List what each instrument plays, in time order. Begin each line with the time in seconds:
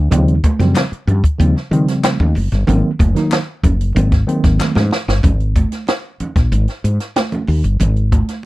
0.11 fretless electric bass D#2, tine electric piano C#3 F3 G3 C4, kick, closed hi-hat, low conga
0.28 closed hi-hat
0.44 kick, closed hi-hat, muted conga, high conga
0.59 fretless electric bass F#2, tine electric piano C#3 F3 G3 C4, snare, closed hi-hat
0.75 snare, clap, closed hi-hat, muted conga
0.92 muted fretless electric bass stroke, closed hi-hat
1.07 fretless electric bass G2, tine electric piano G3 C4, closed hi-hat, low conga
1.24 kick, closed hi-hat
1.39 fretless electric bass D#2, tine electric piano C#3 F3 G3 C4, closed hi-hat, muted conga
1.57 snare
1.71 tine electric piano C#3 F3 G3 C4, fretless electric bass D#3, closed hi-hat
1.88 snare, closed hi-hat
2.04 snare, clap, closed hi-hat, high conga
2.20 fretless electric bass D#2, high conga, low conga
2.35 fretless electric bass F#1, open hi-hat, muted conga
2.52 fretless electric bass G1, snare, closed hi-hat
2.67 fretless electric bass G#1, tine electric piano D#3 F#3 A#3 C4, closed hi-hat, muted conga, low conga
2.99 fretless electric bass F#1, kick, closed hi-hat, high conga
3.15 tine electric piano D#3 F#3 A#3 D#4, snare, closed hi-hat
3.31 snare, clap, closed hi-hat, muted conga
3.63 fretless electric bass F#1, tine electric piano A#3 C4, kick, closed hi-hat, muted conga, low conga
3.81 closed hi-hat
3.95 fretless electric bass G#1, tine electric piano D#3 F#3 A#3 C4, closed hi-hat, muted conga
4.12 kick, snare, closed hi-hat
4.27 tine electric piano D#3 F#3 A#3 C4, closed hi-hat
4.44 fretless electric bass G#1, kick, snare, closed hi-hat
4.59 snare, clap, muted conga, high conga
4.75 fretless electric bass G#2, snare, high conga, low conga
4.91 snare, muted conga
5.08 fretless electric bass G1, snare
5.23 fretless electric bass G#1, kick, closed hi-hat, muted conga, low conga
5.40 closed hi-hat
5.56 kick, closed hi-hat, muted conga, high conga
5.72 snare, closed hi-hat
5.87 snare, closed hi-hat, muted conga
6.20 muted fretless electric bass stroke, closed hi-hat, muted conga, low conga
6.36 fretless electric bass A#1, kick, snare, closed hi-hat
6.52 fretless electric bass G#1, closed hi-hat, muted conga
6.68 snare, closed hi-hat
6.84 fretless electric bass G#2, closed hi-hat, muted conga
7.00 snare, closed hi-hat
7.16 snare, closed hi-hat, high conga
7.32 closed hi-hat, high conga, low conga
7.47 fretless electric bass D#2, open hi-hat, muted conga
7.64 fretless electric bass G1, closed hi-hat
7.80 fretless electric bass G#1, closed hi-hat, low conga
7.96 closed hi-hat
8.12 kick, closed hi-hat, muted conga, high conga
8.28 snare, closed hi-hat